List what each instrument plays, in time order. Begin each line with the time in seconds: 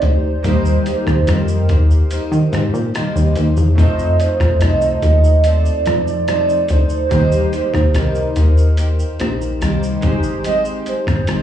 0.02 analog synth bass D2, steel-string acoustic guitar D#4 G4 C5, soft synth lead C5, closed hi-hat
0.43 analog synth bass D#2, steel-string acoustic guitar D#3 G3 A#3 D#4 G4 C5, synth keys A#3 D#4 G4, kick, closed hi-hat, shaker
0.48 synth keys C5
0.65 shaker
0.86 steel-string acoustic guitar A#3 D#4 G4 C5, soft synth lead C5, closed hi-hat, shaker
1.07 analog synth bass D#2, kick, cross-stick, shaker
1.27 analog synth bass F2, steel-string acoustic guitar D#3 G3 A#3 D#4 G4 C5, soft synth lead A#4, cross-stick, closed hi-hat, shaker
1.48 shaker
1.69 analog synth bass D#2, steel-string acoustic guitar A#3 D#4 G4 C5, kick, closed hi-hat, shaker
1.91 shaker
2.10 steel-string acoustic guitar A#3 D#4 G4 C5, closed hi-hat, shaker
2.32 analog synth bass D#3, shaker
2.52 analog synth bass G#2, steel-string acoustic guitar A#3 D#4 G4 C5, cross-stick, closed hi-hat, shaker
2.73 analog synth bass A#2, shaker
2.94 steel-string acoustic guitar D#3 G3 A#3 D#4 G4 C5, cross-stick, closed hi-hat, shaker
3.15 analog synth bass D#2, shaker
3.36 analog synth bass D#2, steel-string acoustic guitar A#3 D#4 G4 C5, closed hi-hat, shaker
3.57 analog synth bass E2, shaker
3.75 analog synth bass F2, steel-string acoustic guitar F3 C4 D#4 A4, synth keys A3 D#4 F4, soft synth lead D#5, kick, closed hi-hat, shaker
3.79 steel-string acoustic guitar C5, synth keys C5
3.99 shaker
4.19 steel-string acoustic guitar D#4 A4 C5, soft synth lead C5, closed hi-hat, shaker
4.40 analog synth bass F2, kick, cross-stick, shaker
4.61 analog synth bass C2, steel-string acoustic guitar F3 C4 D#4 A4 C5, soft synth lead D#5, cross-stick, closed hi-hat, shaker
4.81 shaker
5.02 analog synth bass D#2, steel-string acoustic guitar D#4 A4 C5, closed hi-hat, shaker
5.24 shaker
5.44 steel-string acoustic guitar C4 D#4 A4 C5, soft synth lead D5, closed hi-hat, shaker
5.66 shaker
5.86 analog synth bass F2, steel-string acoustic guitar D#4 A4 C5, soft synth lead D5, cross-stick, closed hi-hat, shaker
6.07 shaker
6.28 steel-string acoustic guitar F3 C4 D#4 A4 C5, cross-stick, closed hi-hat, shaker
6.49 shaker
6.68 analog synth bass D2, steel-string acoustic guitar D#4 A4 C5, soft synth lead C5, closed hi-hat, shaker
6.89 shaker
7.09 analog synth bass D#2, steel-string acoustic guitar D#3 G3 A#3 D#4 G4 C5, synth keys A#3 D#4 G4, kick, closed hi-hat, shaker
7.14 synth keys C5
7.32 shaker
7.52 steel-string acoustic guitar A#3 D#4 G4 C5, soft synth lead C5, closed hi-hat, shaker
7.74 analog synth bass D#2, kick, cross-stick, shaker
7.94 analog synth bass C2, steel-string acoustic guitar D#3 G3 A#3 D#4 G4 C5, soft synth lead A#4, cross-stick, closed hi-hat, shaker
8.15 shaker
8.35 analog synth bass D#2, steel-string acoustic guitar A#3 D#4 G4 C5, closed hi-hat, shaker
8.58 shaker
8.77 steel-string acoustic guitar A#3 D#4 G4 C5, closed hi-hat, shaker
8.99 shaker
9.19 analog synth bass A#1, steel-string acoustic guitar A#3 D#4 G4 C5, cross-stick, closed hi-hat, shaker
9.41 shaker
9.61 analog synth bass C2, steel-string acoustic guitar D#3 G3 A#3 D#4 G4 C5, cross-stick, closed hi-hat, shaker
9.83 shaker
10.01 analog synth bass G#1, synth keys G#3 D#4 G4, steel-string acoustic guitar D#4 G4 C5, kick, closed hi-hat, shaker
10.06 synth keys C5
10.23 shaker
10.44 steel-string acoustic guitar G#3 C4 D#4 G4 C5, soft synth lead D#5, closed hi-hat, shaker
10.65 shaker
10.86 steel-string acoustic guitar D#4 G4 C5, soft synth lead C5, closed hi-hat, shaker
11.07 analog synth bass G#1, kick, cross-stick, shaker
11.27 analog synth bass G#1, steel-string acoustic guitar G#3 C4 D#4 G4 C5, cross-stick, closed hi-hat, shaker